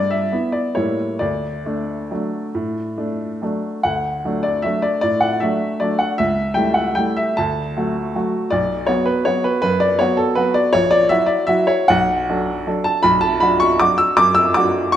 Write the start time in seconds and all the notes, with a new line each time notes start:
Already playing: G2 D5
0.11 E5
0.32 B3 E4
0.52 D5
0.75 A2 G3 A#3 E4 C#5
1.19 D2 D5
1.66 A3 D4
2.11 F#3 A3 D4
2.55 A2
2.98 A3 D4
3.42 F#3 A3 D4
3.83 D2 F#5
4.25 F#3 A3 D4
4.43 D5
4.62 F#3 A3 D4 E5
4.82 D5
5.01 A2 D5
5.21 F#5
5.40 F#3 A3 D4 E5
5.80 F#3 A3 D4 D5
5.99 F#5
6.18 C#2 E5
6.54 G3 A3 E4 G5
6.74 F#5
6.95 G3 A3 E4 G5
7.17 E5
7.37 D2 A5
7.77 F#3 A3 F#4
8.15 F#3 A3 F#4
8.51 B1 D5
8.87 F#3 B3 F#4 C#5
9.06 B4
9.25 F#3 B3 F#4 C#5
9.44 B4
9.62 F#2 B4
9.80 D5
9.99 F#3 B3 F#4 C#5
10.17 A4
10.35 F#3 B3 F#4 B4
10.54 D5
10.73 A#1 C#5
10.91 D5
11.09 F#3 E4 F#4 E5
11.26 D5
11.47 F#3 E4 F#4 E5
11.67 C#5
11.88 B1 F#5
12.29 F#3 D4 A4
12.67 F#3 D4 A4
12.84 A5
13.03 B1 B5
13.21 A5
13.40 F#3 D4 F#4 B5
13.60 C#6
13.80 F#3 D4 F#4 D6
13.98 E6
14.17 F#2 D6
14.35 E6
14.54 F#3 D4 F#4 D6
14.92 C#6